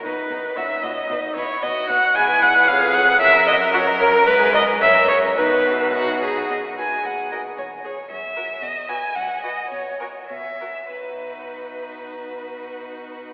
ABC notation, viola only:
X:1
M:2/4
L:1/8
Q:1/4=112
K:B
V:1 name="Viola"
B2 e d- | d c d f | g f ^e f | e d F A |
B d e c | B2 z2 | z F z F | z G z F |
z F z F | z F z F | D4- | D4 |]